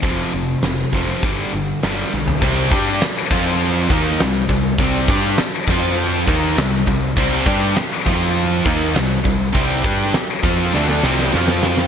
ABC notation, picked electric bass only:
X:1
M:4/4
L:1/8
Q:1/4=101
K:Gm
V:1 name="Picked electric bass" clef=bass
F,,, F,,, F,,, F,,, G,,, G,,, G,,, =B,,, | [K:Cm] C,, G,, z F,,2 E,, C,, C,, | C,, G,, z F,,2 E,, C,, C,, | C,, G,, z F,,2 E,, C,, C,, |
C,, G,, z F,, D,, C,, F,,2 |]